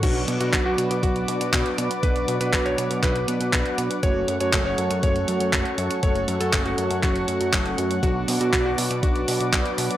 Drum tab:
CC |x---------------|----------------|----------------|----------------|
HH |x-xxx-xxxxxxxxxx|xxxxxxxxxxxxxxxx|x-xxx-xxxxxxxxxx|xxxxxxxxxxxxxxxx|
CP |----x-------x---|----x---x---x---|----x-------x---|----x---x---x---|
BD |o---o---o---o---|o---o---o---o---|o---o---o---o---|o---o---o---o---|

CC |----------------|
HH |x-oxx-oxxxoxxxox|
CP |----x-------x---|
BD |o---o---o---o---|